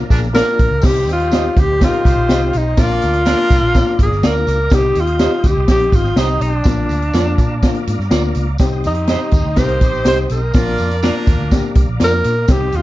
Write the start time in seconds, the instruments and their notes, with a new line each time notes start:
Already playing: tonewheel organ A#4 D5 F5 A#5
0.10 picked electric bass A#1, reed electric piano A#3 D4 G#4, horn section A#3 D4 F4 A#4, kick, closed hi-hat, tambourine
0.23 snare
0.33 reed electric piano A#3 D4 F4, horn section A#3 D4 F4 A#4, clean electric guitar F4 A#4 D5, tenor saxophone A#4, snare, closed hi-hat, tambourine
0.59 picked electric bass A#1, kick, closed hi-hat, tambourine
0.71 picked electric bass C#2
0.82 picked electric bass C2, reed electric piano C4 D#4 G4, tenor saxophone G4, tonewheel organ C5 D#5 G5 C6, kick, snare, crash, tambourine
1.06 picked electric bass D#2, horn section G3 C4 D#4 G4, closed hi-hat, tambourine
1.13 tenor saxophone F4
1.20 closed hi-hat
1.31 reed electric piano C4 D#4 G4, clean electric guitar G4 C5 D#5, snare, closed hi-hat, tambourine
1.56 picked electric bass D2, tenor saxophone G4, kick, closed hi-hat, tambourine
1.80 horn section A#3 D#4 G4 A#4, reed electric piano C4 D#4 G4, kick, snare, closed hi-hat, tambourine
1.84 tenor saxophone F4
1.93 closed hi-hat
2.04 picked electric bass C2, horn section C4 D#4 G4 C5, kick, closed hi-hat, tambourine
2.18 picked electric bass A#1
2.29 picked electric bass C2, reed electric piano C4 D#4 G4, clean electric guitar G4 C5 D#5, snare, closed hi-hat, tambourine
2.53 picked electric bass B1, closed hi-hat, tambourine
2.57 tenor saxophone D#4
2.76 picked electric bass A#1, reed electric piano A#3 D4 F4, horn section D4 F4 A#4 D5, tonewheel organ D5 F5 A#5 D6, kick, snare, closed hi-hat, tambourine
2.81 tenor saxophone F4
3.01 picked electric bass D2, closed hi-hat, tambourine
3.13 closed hi-hat
3.25 horn section A#3 D4 F4 A#4, reed electric piano A#3 D4 F4, clean electric guitar F4 A#4 D5, snare, closed hi-hat, tambourine
3.50 picked electric bass C2, kick, closed hi-hat, tambourine
3.63 picked electric bass A#1
3.74 reed electric piano A#3 D4 F4, kick, snare, closed hi-hat, tambourine
3.99 picked electric bass G#1, tenor saxophone G#4, kick, closed hi-hat, tambourine
4.11 picked electric bass G1, snare
4.23 picked electric bass D2, reed electric piano A#3 D4 F4, clean electric guitar F4 A#4 D5, tenor saxophone A#4, snare, closed hi-hat, tambourine
4.47 picked electric bass C#2, closed hi-hat, tambourine
4.70 picked electric bass C2, reed electric piano C4 D#4 G4, tonewheel organ D#5 G5 C6 D#6, kick, snare, closed hi-hat, tambourine
4.75 tenor saxophone G4
4.95 picked electric bass D#2, closed hi-hat, tambourine
5.01 tenor saxophone F4
5.07 closed hi-hat
5.19 reed electric piano C4 D#4 G4, clean electric guitar G4 C5 D#5, snare, closed hi-hat, tambourine
5.43 picked electric bass D2, tenor saxophone G4, kick, closed hi-hat, tambourine
5.57 picked electric bass C2
5.68 picked electric bass A#1, reed electric piano C4 D#4 G4, tenor saxophone G4, kick, snare, closed hi-hat, tambourine
5.79 closed hi-hat
5.92 picked electric bass G#1, tenor saxophone F4, kick, closed hi-hat, tambourine
6.04 snare
6.16 picked electric bass C2, reed electric piano C4 D#4 G4, tenor saxophone D#4, clean electric guitar G4 C5 D#5, snare, closed hi-hat, tambourine
6.40 picked electric bass B1, tenor saxophone D#4, closed hi-hat, tambourine
6.53 tenor saxophone D4
6.63 picked electric bass A#1, reed electric piano A#3 D4 F4, tonewheel organ D5 F5 A#5 D6, kick, snare, closed hi-hat, tambourine
6.89 picked electric bass D2, closed hi-hat, tambourine
7.02 closed hi-hat
7.13 picked electric bass F2, reed electric piano A#3 D4 F4, clean electric guitar F4 A#4 D5, snare, closed hi-hat, tambourine
7.38 picked electric bass A#2, kick, closed hi-hat, tambourine
7.62 reed electric piano A#3 D4 F4, kick, snare, closed hi-hat, tambourine
7.75 closed hi-hat
7.87 picked electric bass G#2, closed hi-hat, tambourine
7.99 picked electric bass G2, snare
8.11 picked electric bass D2, reed electric piano A#3 D4 F4, clean electric guitar F4 A#4 D5, snare, closed hi-hat, tambourine
8.35 picked electric bass C#2, closed hi-hat, tambourine
8.58 picked electric bass C2, reed electric piano C4 D#4 G4, tonewheel organ D#5 G5 C6 D#6, kick, snare, closed hi-hat, tambourine
8.84 picked electric bass F2, horn section G3 C4 D#4 G4, tenor saxophone D#4, closed hi-hat, tambourine
8.95 closed hi-hat
9.07 reed electric piano C4 D#4 G4, clean electric guitar G4 C5 D#5, snare, closed hi-hat, tambourine
9.31 picked electric bass D#2, kick, closed hi-hat, tambourine
9.45 picked electric bass D2
9.56 picked electric bass C2, horn section A#3 D#4 G4 A#4, reed electric piano C4 D#4 G4, tenor saxophone C5, kick, snare, closed hi-hat, tambourine
9.69 closed hi-hat
9.81 picked electric bass A#1, horn section C4 D#4 G4 C5, kick, closed hi-hat, tambourine
9.93 snare
10.05 picked electric bass C2, reed electric piano C4 D#4 G4, clean electric guitar G4 C5 D#5, tenor saxophone C5, snare, closed hi-hat, tambourine
10.29 picked electric bass B1, tenor saxophone A#4, closed hi-hat, tambourine
10.53 picked electric bass A#1, reed electric piano A#3 D4 F4, horn section D4 F4 A#4 D5, tonewheel organ D5 F5 A#5 D6, kick, snare, closed hi-hat, tambourine
10.78 picked electric bass F2, closed hi-hat, tambourine
10.91 closed hi-hat
11.02 horn section A#3 D4 F4 A#4, reed electric piano A#3 D4 F4, clean electric guitar F4 A#4 D5, snare, closed hi-hat, tambourine
11.27 picked electric bass D#2, kick, closed hi-hat, tambourine
11.40 picked electric bass D2
11.51 reed electric piano A#3 D4 G4, kick, snare, closed hi-hat, tambourine
11.75 picked electric bass C2, kick, closed hi-hat, tambourine
11.88 picked electric bass A#1
12.00 picked electric bass F2, reed electric piano A#3 D4 F4, clean electric guitar F4 A#4 D5, snare, closed hi-hat, tambourine
12.04 tenor saxophone A#4
12.24 picked electric bass A#2, closed hi-hat, tambourine
12.48 picked electric bass C2, reed electric piano C4 D#4 G4, tenor saxophone G4, tonewheel organ D#5 G5 C6 D#6, kick, snare, closed hi-hat, tambourine
12.72 picked electric bass D#2, closed hi-hat, tambourine
12.77 tenor saxophone F4